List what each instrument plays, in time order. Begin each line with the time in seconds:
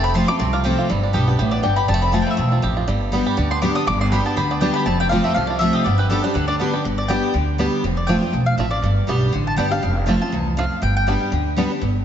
Already playing: upright bass F1, steel-string acoustic guitar F2, five-string banjo A3
0.04 five-string banjo C4, mandolin B5
0.14 steel-string acoustic guitar F3 A3 C4 F4, five-string banjo F4, mandolin C6
0.28 five-string banjo A3, steel-string acoustic guitar C4 F4, mandolin D6
0.39 upright bass C2, steel-string acoustic guitar C3, five-string banjo C4, mandolin C6
0.53 five-string banjo F4, mandolin F5
0.64 steel-string acoustic guitar F3 A3 C4 F4, five-string banjo G4
0.78 five-string banjo F4
0.90 upright bass G1, steel-string acoustic guitar G2, five-string banjo G3
1.03 five-string banjo D4
1.13 upright bass B1, steel-string acoustic guitar G3 B3 D4 G4, five-string banjo G4
1.27 five-string banjo B3, steel-string acoustic guitar D4 G4
1.39 upright bass A1, steel-string acoustic guitar A2, five-string banjo G4
1.51 five-string banjo B3, mandolin D5
1.63 upright bass G1, steel-string acoustic guitar G2, five-string banjo D4, mandolin G5
1.76 five-string banjo G4, mandolin B5
1.88 upright bass F1, steel-string acoustic guitar F2, five-string banjo G3, mandolin A5
1.94 five-string banjo A3
2.02 five-string banjo C4, mandolin B5
2.12 steel-string acoustic guitar F3 A3 C4 F4, five-string banjo F4, mandolin A5
2.22 mandolin G5
2.27 five-string banjo A3, mandolin E5
2.37 upright bass B1, steel-string acoustic guitar E2, five-string banjo C4
2.52 five-string banjo F4
2.62 upright bass A1, steel-string acoustic guitar F2, five-string banjo G4
2.77 five-string banjo F4
2.88 upright bass G1, steel-string acoustic guitar G2, five-string banjo G3
3.12 steel-string acoustic guitar G3 B3 D4 G4, five-string banjo B3
3.26 five-string banjo G4
3.37 upright bass D2, steel-string acoustic guitar D3, five-string banjo D4
3.51 five-string banjo B3, mandolin C6
3.62 steel-string acoustic guitar G3 B3 D4 G4, five-string banjo D4, mandolin D6
3.75 five-string banjo G3, steel-string acoustic guitar D4 G4, mandolin D#6
3.87 upright bass G1, steel-string acoustic guitar G2, five-string banjo G3, mandolin D6
4.01 five-string banjo D4, mandolin C6
4.12 steel-string acoustic guitar G3 B3 D4 G4, five-string banjo G4, mandolin B5
4.26 five-string banjo B3, mandolin A5
4.36 upright bass D2, steel-string acoustic guitar D3, five-string banjo G4, mandolin B5
4.51 five-string banjo B3, mandolin D5
4.61 steel-string acoustic guitar G3 B3 D4 G4, five-string banjo D4, mandolin G5
4.74 five-string banjo G4, mandolin B5
4.86 upright bass F1, steel-string acoustic guitar F2, five-string banjo C4, mandolin A5
5.00 five-string banjo G4, mandolin G5
5.09 steel-string acoustic guitar F3 A3 C4 F4, five-string banjo F4, mandolin F5
5.24 five-string banjo A3, mandolin E5
5.34 upright bass C2, steel-string acoustic guitar C3, five-string banjo F3, mandolin F5
5.47 five-string banjo F4, mandolin D5
5.59 steel-string acoustic guitar F3 A3 C4 F4, five-string banjo C4, mandolin E5
5.73 five-string banjo G4, mandolin D#5
5.84 upright bass G1, steel-string acoustic guitar G2, five-string banjo B3, mandolin D5
5.98 five-string banjo G4, mandolin B4
6.10 steel-string acoustic guitar G3 B3 D4 G4, five-string banjo D4, mandolin A4
6.24 five-string banjo G3, steel-string acoustic guitar D4 G4, mandolin C5
6.34 upright bass D2, steel-string acoustic guitar D3, five-string banjo D3, mandolin B4
6.48 five-string banjo D4, mandolin D5
6.60 steel-string acoustic guitar G3 B3 D4 G4, five-string banjo B3
6.73 steel-string acoustic guitar D4 G4, five-string banjo G4
6.85 upright bass G1, steel-string acoustic guitar G2
6.98 mandolin D5
7.08 steel-string acoustic guitar G3 B3 D4 G4, five-string banjo G3 B3 D4, mandolin G5
7.34 upright bass D2, steel-string acoustic guitar D3
7.58 steel-string acoustic guitar G3 B3 D4 G4, five-string banjo G3 B3 D4
7.83 upright bass F1, steel-string acoustic guitar F2
7.97 mandolin D5
8.07 steel-string acoustic guitar F3 A3 C4 F4, five-string banjo A3 C4 F4, mandolin G5
8.21 steel-string acoustic guitar C4 F4
8.33 upright bass B1, steel-string acoustic guitar E2
8.46 mandolin F5
8.57 upright bass A1, steel-string acoustic guitar F2, five-string banjo A3 C4 F4, mandolin E5
8.71 mandolin D5
8.82 upright bass G1, steel-string acoustic guitar G2
9.07 upright bass B1, steel-string acoustic guitar G3 B3 D4 G4, five-string banjo G3 B3 D4
9.32 upright bass A1, steel-string acoustic guitar D3
9.47 mandolin A5
9.56 upright bass G1, steel-string acoustic guitar G3 B3 D4 G4, five-string banjo G3 B3 D4, mandolin G5
9.71 steel-string acoustic guitar D4 G4, mandolin F5
9.83 upright bass F1, steel-string acoustic guitar F2
10.06 steel-string acoustic guitar F3 A3 C4 F4, five-string banjo A3 C4 F4
10.20 steel-string acoustic guitar C4 F4, mandolin A5
10.32 upright bass C2, steel-string acoustic guitar E2
10.57 steel-string acoustic guitar F2, five-string banjo A3 C4 F4, mandolin F5
10.82 upright bass G1, steel-string acoustic guitar G2, mandolin G5
10.97 mandolin G5
11.07 steel-string acoustic guitar G3 B3 D4 G4, five-string banjo G3 B3 D4
11.31 upright bass D2, steel-string acoustic guitar D3
11.56 steel-string acoustic guitar G3 B3 D4 G4, five-string banjo G3 B3 D4
11.70 steel-string acoustic guitar D4 G4
11.81 upright bass G1, steel-string acoustic guitar G2